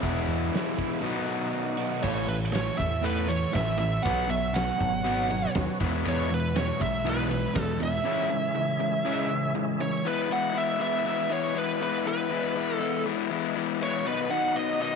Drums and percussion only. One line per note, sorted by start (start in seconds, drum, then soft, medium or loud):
0.03 kick loud
0.03 closed hi-hat medium
0.30 closed hi-hat medium
0.55 snare loud
0.55 closed hi-hat medium
0.79 kick medium
0.79 closed hi-hat medium
2.04 kick loud
2.04 crash loud
2.29 ride medium
2.55 snare loud
2.55 ride loud
2.80 kick medium
2.80 ride medium
3.06 ride medium
3.30 ride medium
3.55 kick medium
3.55 snare loud
3.55 ride loud
3.80 ride medium
4.06 kick loud
4.06 ride medium
4.31 ride medium
4.56 snare loud
4.56 ride loud
4.80 kick medium
4.80 ride medium
5.06 ride medium
5.31 ride medium
5.44 snare soft
5.55 kick medium
5.55 snare loud
5.55 ride medium
5.80 kick loud
5.80 ride medium
6.05 ride medium
6.30 ride medium
6.56 snare loud
6.56 ride loud
6.81 kick medium
6.81 ride medium
7.06 ride medium
7.31 ride medium
7.45 snare soft
7.55 kick medium
7.55 snare loud
7.55 ride loud
7.80 ride medium